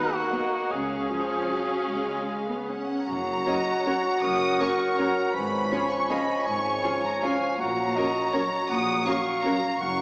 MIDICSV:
0, 0, Header, 1, 11, 480
1, 0, Start_track
1, 0, Key_signature, 6, "major"
1, 0, Tempo, 400267
1, 841, Time_signature, 3, 2, 24, 8
1, 1826, Tempo, 388098
1, 4706, Tempo, 373832
1, 10466, Tempo, 364520
1, 12677, End_track
2, 0, Start_track
2, 0, Title_t, "Violin section"
2, 0, Program_c, 0, 48
2, 0, Note_on_c, 0, 78, 67
2, 362, Note_off_c, 0, 78, 0
2, 377, Note_on_c, 0, 75, 54
2, 834, Note_on_c, 0, 77, 51
2, 840, Note_off_c, 0, 75, 0
2, 3272, Note_off_c, 0, 77, 0
2, 3273, Note_on_c, 0, 78, 63
2, 3717, Note_off_c, 0, 78, 0
2, 3745, Note_on_c, 0, 82, 81
2, 5174, Note_off_c, 0, 82, 0
2, 5188, Note_on_c, 0, 87, 96
2, 5660, Note_off_c, 0, 87, 0
2, 5679, Note_on_c, 0, 85, 73
2, 6153, Note_on_c, 0, 82, 68
2, 6169, Note_off_c, 0, 85, 0
2, 6621, Note_off_c, 0, 82, 0
2, 6624, Note_on_c, 0, 83, 80
2, 7335, Note_off_c, 0, 83, 0
2, 7339, Note_on_c, 0, 85, 72
2, 7588, Note_off_c, 0, 85, 0
2, 7596, Note_on_c, 0, 83, 77
2, 8056, Note_on_c, 0, 85, 78
2, 8063, Note_off_c, 0, 83, 0
2, 8786, Note_off_c, 0, 85, 0
2, 8810, Note_on_c, 0, 82, 67
2, 9046, Note_off_c, 0, 82, 0
2, 9047, Note_on_c, 0, 80, 58
2, 9506, Note_on_c, 0, 82, 79
2, 9511, Note_off_c, 0, 80, 0
2, 10911, Note_off_c, 0, 82, 0
2, 10932, Note_on_c, 0, 87, 93
2, 11415, Note_off_c, 0, 87, 0
2, 11418, Note_on_c, 0, 85, 75
2, 11912, Note_on_c, 0, 82, 79
2, 11926, Note_off_c, 0, 85, 0
2, 12375, Note_on_c, 0, 85, 87
2, 12388, Note_off_c, 0, 82, 0
2, 12677, Note_off_c, 0, 85, 0
2, 12677, End_track
3, 0, Start_track
3, 0, Title_t, "Flute"
3, 0, Program_c, 1, 73
3, 3753, Note_on_c, 1, 78, 57
3, 6571, Note_off_c, 1, 78, 0
3, 6628, Note_on_c, 1, 80, 51
3, 9456, Note_off_c, 1, 80, 0
3, 9511, Note_on_c, 1, 82, 54
3, 12005, Note_off_c, 1, 82, 0
3, 12404, Note_on_c, 1, 82, 57
3, 12677, Note_off_c, 1, 82, 0
3, 12677, End_track
4, 0, Start_track
4, 0, Title_t, "Clarinet"
4, 0, Program_c, 2, 71
4, 4236, Note_on_c, 2, 75, 68
4, 4711, Note_on_c, 2, 73, 54
4, 4730, Note_off_c, 2, 75, 0
4, 5180, Note_off_c, 2, 73, 0
4, 5187, Note_on_c, 2, 70, 60
4, 6636, Note_on_c, 2, 71, 55
4, 6655, Note_off_c, 2, 70, 0
4, 7117, Note_on_c, 2, 73, 54
4, 7136, Note_off_c, 2, 71, 0
4, 7586, Note_off_c, 2, 73, 0
4, 7594, Note_on_c, 2, 75, 61
4, 8053, Note_off_c, 2, 75, 0
4, 8082, Note_on_c, 2, 73, 60
4, 9050, Note_on_c, 2, 77, 56
4, 9069, Note_off_c, 2, 73, 0
4, 9512, Note_on_c, 2, 78, 62
4, 9531, Note_off_c, 2, 77, 0
4, 9979, Note_on_c, 2, 75, 65
4, 9998, Note_off_c, 2, 78, 0
4, 10459, Note_on_c, 2, 73, 51
4, 10479, Note_off_c, 2, 75, 0
4, 10928, Note_off_c, 2, 73, 0
4, 10936, Note_on_c, 2, 78, 62
4, 11407, Note_off_c, 2, 78, 0
4, 11427, Note_on_c, 2, 77, 62
4, 12399, Note_on_c, 2, 78, 65
4, 12419, Note_off_c, 2, 77, 0
4, 12677, Note_off_c, 2, 78, 0
4, 12677, End_track
5, 0, Start_track
5, 0, Title_t, "Cor anglais"
5, 0, Program_c, 3, 69
5, 0, Note_on_c, 3, 71, 93
5, 164, Note_on_c, 3, 66, 77
5, 182, Note_off_c, 3, 71, 0
5, 854, Note_on_c, 3, 68, 68
5, 872, Note_off_c, 3, 66, 0
5, 3528, Note_off_c, 3, 68, 0
5, 3735, Note_on_c, 3, 73, 58
5, 6562, Note_off_c, 3, 73, 0
5, 6638, Note_on_c, 3, 73, 57
5, 9461, Note_off_c, 3, 73, 0
5, 9509, Note_on_c, 3, 73, 61
5, 12004, Note_off_c, 3, 73, 0
5, 12401, Note_on_c, 3, 73, 70
5, 12677, Note_off_c, 3, 73, 0
5, 12677, End_track
6, 0, Start_track
6, 0, Title_t, "Violin section"
6, 0, Program_c, 4, 48
6, 0, Note_on_c, 4, 63, 67
6, 150, Note_off_c, 4, 63, 0
6, 157, Note_on_c, 4, 58, 62
6, 848, Note_off_c, 4, 58, 0
6, 852, Note_on_c, 4, 61, 58
6, 3526, Note_off_c, 4, 61, 0
6, 4221, Note_on_c, 4, 73, 44
6, 4228, Note_on_c, 4, 70, 52
6, 4320, Note_off_c, 4, 73, 0
6, 4327, Note_off_c, 4, 70, 0
6, 4710, Note_on_c, 4, 70, 45
6, 4710, Note_on_c, 4, 73, 46
6, 4813, Note_off_c, 4, 70, 0
6, 4813, Note_off_c, 4, 73, 0
6, 5663, Note_on_c, 4, 73, 46
6, 5667, Note_on_c, 4, 70, 48
6, 5766, Note_off_c, 4, 73, 0
6, 5769, Note_off_c, 4, 70, 0
6, 6153, Note_on_c, 4, 73, 45
6, 6155, Note_on_c, 4, 70, 52
6, 6255, Note_off_c, 4, 73, 0
6, 6258, Note_off_c, 4, 70, 0
6, 7104, Note_on_c, 4, 68, 42
6, 7107, Note_on_c, 4, 73, 44
6, 7207, Note_off_c, 4, 68, 0
6, 7209, Note_off_c, 4, 73, 0
6, 7587, Note_on_c, 4, 73, 49
6, 7590, Note_on_c, 4, 68, 51
6, 7689, Note_off_c, 4, 73, 0
6, 7693, Note_off_c, 4, 68, 0
6, 8524, Note_on_c, 4, 73, 50
6, 8530, Note_on_c, 4, 68, 47
6, 8627, Note_off_c, 4, 73, 0
6, 8633, Note_off_c, 4, 68, 0
6, 9034, Note_on_c, 4, 68, 45
6, 9037, Note_on_c, 4, 73, 50
6, 9137, Note_off_c, 4, 68, 0
6, 9140, Note_off_c, 4, 73, 0
6, 9981, Note_on_c, 4, 70, 52
6, 9989, Note_on_c, 4, 73, 49
6, 10084, Note_off_c, 4, 70, 0
6, 10092, Note_off_c, 4, 73, 0
6, 10456, Note_on_c, 4, 73, 56
6, 10459, Note_on_c, 4, 70, 53
6, 10562, Note_off_c, 4, 73, 0
6, 10564, Note_off_c, 4, 70, 0
6, 11411, Note_on_c, 4, 73, 48
6, 11414, Note_on_c, 4, 70, 52
6, 11516, Note_off_c, 4, 73, 0
6, 11520, Note_off_c, 4, 70, 0
6, 11924, Note_on_c, 4, 70, 53
6, 11929, Note_on_c, 4, 73, 52
6, 12029, Note_off_c, 4, 70, 0
6, 12034, Note_off_c, 4, 73, 0
6, 12677, End_track
7, 0, Start_track
7, 0, Title_t, "Viola section"
7, 0, Program_c, 5, 48
7, 380, Note_on_c, 5, 54, 39
7, 380, Note_on_c, 5, 59, 43
7, 476, Note_off_c, 5, 54, 0
7, 476, Note_off_c, 5, 59, 0
7, 1325, Note_on_c, 5, 53, 56
7, 1792, Note_off_c, 5, 53, 0
7, 1812, Note_on_c, 5, 54, 49
7, 2298, Note_off_c, 5, 54, 0
7, 2306, Note_on_c, 5, 56, 59
7, 3015, Note_off_c, 5, 56, 0
7, 3026, Note_on_c, 5, 59, 51
7, 3274, Note_off_c, 5, 59, 0
7, 3278, Note_on_c, 5, 61, 43
7, 3753, Note_off_c, 5, 61, 0
7, 4224, Note_on_c, 5, 66, 51
7, 4227, Note_on_c, 5, 61, 47
7, 4323, Note_off_c, 5, 66, 0
7, 4326, Note_off_c, 5, 61, 0
7, 4713, Note_on_c, 5, 66, 47
7, 4716, Note_on_c, 5, 61, 49
7, 4816, Note_off_c, 5, 66, 0
7, 4819, Note_off_c, 5, 61, 0
7, 5669, Note_on_c, 5, 61, 52
7, 5669, Note_on_c, 5, 66, 47
7, 5771, Note_off_c, 5, 61, 0
7, 5771, Note_off_c, 5, 66, 0
7, 6170, Note_on_c, 5, 61, 49
7, 6170, Note_on_c, 5, 66, 50
7, 6273, Note_off_c, 5, 61, 0
7, 6273, Note_off_c, 5, 66, 0
7, 7102, Note_on_c, 5, 65, 46
7, 7106, Note_on_c, 5, 61, 49
7, 7205, Note_off_c, 5, 65, 0
7, 7209, Note_off_c, 5, 61, 0
7, 7593, Note_on_c, 5, 61, 49
7, 7596, Note_on_c, 5, 65, 51
7, 7696, Note_off_c, 5, 61, 0
7, 7699, Note_off_c, 5, 65, 0
7, 8549, Note_on_c, 5, 65, 49
7, 8552, Note_on_c, 5, 61, 47
7, 8652, Note_off_c, 5, 65, 0
7, 8655, Note_off_c, 5, 61, 0
7, 9037, Note_on_c, 5, 65, 48
7, 9039, Note_on_c, 5, 61, 45
7, 9139, Note_off_c, 5, 65, 0
7, 9142, Note_off_c, 5, 61, 0
7, 9982, Note_on_c, 5, 66, 50
7, 9984, Note_on_c, 5, 61, 50
7, 10085, Note_off_c, 5, 66, 0
7, 10087, Note_off_c, 5, 61, 0
7, 10476, Note_on_c, 5, 66, 49
7, 10480, Note_on_c, 5, 61, 48
7, 10581, Note_off_c, 5, 66, 0
7, 10585, Note_off_c, 5, 61, 0
7, 11416, Note_on_c, 5, 66, 51
7, 11417, Note_on_c, 5, 61, 53
7, 11521, Note_off_c, 5, 66, 0
7, 11523, Note_off_c, 5, 61, 0
7, 11928, Note_on_c, 5, 61, 44
7, 11928, Note_on_c, 5, 66, 46
7, 12033, Note_off_c, 5, 61, 0
7, 12033, Note_off_c, 5, 66, 0
7, 12677, End_track
8, 0, Start_track
8, 0, Title_t, "French horn section"
8, 0, Program_c, 6, 60
8, 4214, Note_on_c, 6, 61, 48
8, 4215, Note_on_c, 6, 54, 57
8, 4391, Note_off_c, 6, 61, 0
8, 4392, Note_off_c, 6, 54, 0
8, 4701, Note_on_c, 6, 54, 52
8, 4704, Note_on_c, 6, 61, 49
8, 4874, Note_off_c, 6, 54, 0
8, 4876, Note_off_c, 6, 61, 0
8, 5640, Note_on_c, 6, 61, 52
8, 5642, Note_on_c, 6, 54, 49
8, 5825, Note_off_c, 6, 61, 0
8, 5827, Note_off_c, 6, 54, 0
8, 6153, Note_on_c, 6, 61, 51
8, 6157, Note_on_c, 6, 54, 54
8, 6323, Note_off_c, 6, 61, 0
8, 6326, Note_off_c, 6, 54, 0
8, 7098, Note_on_c, 6, 61, 50
8, 7100, Note_on_c, 6, 53, 51
8, 7276, Note_off_c, 6, 61, 0
8, 7278, Note_off_c, 6, 53, 0
8, 7587, Note_on_c, 6, 53, 52
8, 7596, Note_on_c, 6, 61, 50
8, 7758, Note_off_c, 6, 53, 0
8, 7765, Note_off_c, 6, 61, 0
8, 8535, Note_on_c, 6, 61, 49
8, 8539, Note_on_c, 6, 53, 55
8, 8715, Note_off_c, 6, 61, 0
8, 8718, Note_off_c, 6, 53, 0
8, 9035, Note_on_c, 6, 61, 50
8, 9039, Note_on_c, 6, 53, 49
8, 9205, Note_off_c, 6, 61, 0
8, 9209, Note_off_c, 6, 53, 0
8, 9980, Note_on_c, 6, 61, 55
8, 9985, Note_on_c, 6, 54, 54
8, 10156, Note_off_c, 6, 61, 0
8, 10159, Note_off_c, 6, 54, 0
8, 10479, Note_on_c, 6, 54, 54
8, 10483, Note_on_c, 6, 61, 53
8, 10648, Note_off_c, 6, 54, 0
8, 10651, Note_off_c, 6, 61, 0
8, 11432, Note_on_c, 6, 61, 47
8, 11434, Note_on_c, 6, 54, 51
8, 11612, Note_off_c, 6, 61, 0
8, 11614, Note_off_c, 6, 54, 0
8, 11918, Note_on_c, 6, 54, 56
8, 11918, Note_on_c, 6, 61, 55
8, 12090, Note_off_c, 6, 61, 0
8, 12091, Note_off_c, 6, 54, 0
8, 12677, End_track
9, 0, Start_track
9, 0, Title_t, "Bassoon"
9, 0, Program_c, 7, 70
9, 3755, Note_on_c, 7, 54, 55
9, 6625, Note_on_c, 7, 53, 51
9, 6644, Note_off_c, 7, 54, 0
9, 9506, Note_off_c, 7, 53, 0
9, 9520, Note_on_c, 7, 54, 48
9, 12010, Note_off_c, 7, 54, 0
9, 12405, Note_on_c, 7, 54, 55
9, 12677, Note_off_c, 7, 54, 0
9, 12677, End_track
10, 0, Start_track
10, 0, Title_t, "Cello section"
10, 0, Program_c, 8, 48
10, 844, Note_on_c, 8, 49, 57
10, 1239, Note_off_c, 8, 49, 0
10, 2307, Note_on_c, 8, 49, 51
10, 2701, Note_off_c, 8, 49, 0
10, 3755, Note_on_c, 8, 42, 66
10, 4138, Note_off_c, 8, 42, 0
10, 5182, Note_on_c, 8, 42, 64
10, 5573, Note_off_c, 8, 42, 0
10, 6628, Note_on_c, 8, 44, 66
10, 7019, Note_off_c, 8, 44, 0
10, 8069, Note_on_c, 8, 44, 56
10, 8459, Note_off_c, 8, 44, 0
10, 9513, Note_on_c, 8, 46, 67
10, 9898, Note_off_c, 8, 46, 0
10, 10944, Note_on_c, 8, 46, 65
10, 11336, Note_off_c, 8, 46, 0
10, 12392, Note_on_c, 8, 42, 65
10, 12677, Note_off_c, 8, 42, 0
10, 12677, End_track
11, 0, Start_track
11, 0, Title_t, "Double bass section"
11, 0, Program_c, 10, 48
11, 846, Note_on_c, 10, 37, 57
11, 1240, Note_off_c, 10, 37, 0
11, 2303, Note_on_c, 10, 37, 49
11, 2699, Note_off_c, 10, 37, 0
11, 3754, Note_on_c, 10, 30, 62
11, 4137, Note_off_c, 10, 30, 0
11, 5182, Note_on_c, 10, 30, 59
11, 5573, Note_off_c, 10, 30, 0
11, 6627, Note_on_c, 10, 32, 59
11, 7018, Note_off_c, 10, 32, 0
11, 8070, Note_on_c, 10, 32, 69
11, 8459, Note_off_c, 10, 32, 0
11, 9517, Note_on_c, 10, 34, 59
11, 9900, Note_off_c, 10, 34, 0
11, 10944, Note_on_c, 10, 34, 67
11, 11336, Note_off_c, 10, 34, 0
11, 12398, Note_on_c, 10, 30, 67
11, 12677, Note_off_c, 10, 30, 0
11, 12677, End_track
0, 0, End_of_file